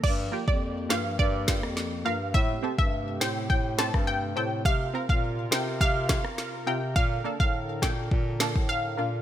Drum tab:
CC |x---------------|----------------|----------------|----------------|
SD |------o---oro---|------o---or----|------o---oro---|------o---o-----|
BD |o--o----o-o-----|o--o----o--o----|o--o----o-o-----|o--o--o-o--o----|